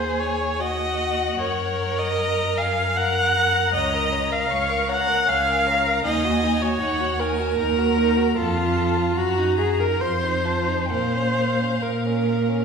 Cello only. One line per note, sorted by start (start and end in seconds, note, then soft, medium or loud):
0.00 1.34 D#2 soft
1.39 3.70 F#2 medium
3.74 4.41 C#2 medium
4.51 5.19 C#2 soft
5.28 5.95 C#2 medium
6.05 6.72 D#2 medium
6.81 7.50 D#2 medium
7.59 8.28 D#2 medium
8.37 9.07 F2 medium
9.16 9.90 F#2 medium
10.00 10.78 F2 medium
10.90 11.71 A#2 soft
11.82 12.60 A#2 soft